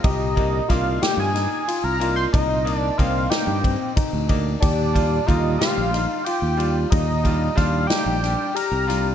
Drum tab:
RD |xxxxxxx|xxxxxxx|xxxxxxx|xxxxxxx|
SD |--ooo--|---o---|---oo--|--ooo-o|
BD |ooo----|o-o-ooo|ooo----|ooo----|